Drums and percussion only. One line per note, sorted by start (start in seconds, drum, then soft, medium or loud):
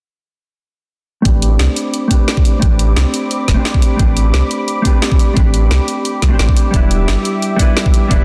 1.25 kick loud
1.25 closed hi-hat medium
1.42 closed hi-hat medium
1.59 snare loud
1.59 closed hi-hat medium
1.76 closed hi-hat medium
1.94 closed hi-hat medium
2.11 kick medium
2.11 closed hi-hat loud
2.28 snare loud
2.28 closed hi-hat medium
2.37 kick loud
2.45 closed hi-hat loud
2.62 kick loud
2.62 closed hi-hat medium
2.79 closed hi-hat medium
2.97 snare loud
2.97 closed hi-hat medium
3.14 closed hi-hat medium
3.31 closed hi-hat medium
3.48 kick medium
3.48 snare soft
3.48 closed hi-hat medium
3.65 snare loud
3.65 closed hi-hat medium
3.74 kick loud
3.82 closed hi-hat medium
3.99 kick loud
3.99 closed hi-hat medium
4.17 closed hi-hat medium
4.34 snare loud
4.34 closed hi-hat medium
4.51 closed hi-hat medium
4.68 closed hi-hat medium
4.85 kick medium
4.85 closed hi-hat medium
5.02 snare loud
5.02 closed hi-hat medium
5.12 kick loud
5.19 closed hi-hat medium
5.37 kick loud
5.37 closed hi-hat medium
5.54 closed hi-hat medium
5.71 snare loud
5.71 closed hi-hat medium
5.88 closed hi-hat medium
6.05 closed hi-hat medium
6.22 kick medium
6.22 snare soft
6.22 closed hi-hat medium
6.39 snare loud
6.39 closed hi-hat medium
6.49 kick loud
6.57 closed hi-hat medium
6.74 kick loud
6.74 closed hi-hat medium
6.91 closed hi-hat medium
7.08 snare loud
7.08 closed hi-hat medium
7.25 closed hi-hat medium
7.42 closed hi-hat medium
7.59 kick medium
7.59 closed hi-hat medium
7.77 snare loud
7.77 closed hi-hat medium
7.86 kick loud
7.94 closed hi-hat medium
8.11 kick loud
8.11 closed hi-hat medium